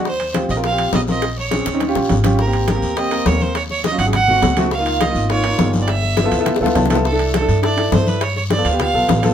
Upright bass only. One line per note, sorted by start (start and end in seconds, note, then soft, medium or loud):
0.00 0.44 D#2 medium
0.49 0.90 A#1 medium
0.92 1.60 A#1 medium
1.66 1.93 D#2 medium
1.95 2.08 A#1 medium
2.09 2.77 G#1 medium
2.82 3.23 D#2 medium
3.26 3.93 D#2 medium
3.98 4.39 G#1 medium
4.42 5.10 C#2 medium
5.15 5.56 G#1 medium
5.59 6.26 G1 medium
6.32 6.59 D2 medium
6.61 6.75 D2 medium
6.75 7.43 C2 medium
7.48 7.89 G2 medium
7.92 8.60 G2 medium
8.65 8.92 D2 medium
8.94 9.08 B1 medium
9.09 9.34 A1 medium